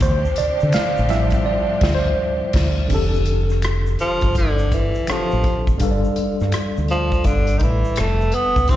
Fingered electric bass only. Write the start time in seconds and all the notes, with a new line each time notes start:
0.02 D2
0.40 muted fingered electric bass stroke
0.63 D3
0.76 muted fingered electric bass stroke
0.99 A1
1.83 D2
2.55 D2
2.92 F1
4.23 G1
5.10 muted fingered electric bass stroke
5.33 A1
5.69 G#1
5.82 G1
6.19 muted fingered electric bass stroke
6.41 G2
6.55 muted fingered electric bass stroke
6.78 D2
7.26 G1
7.62 A1
7.99 F1
8.57 C#2
8.70 C2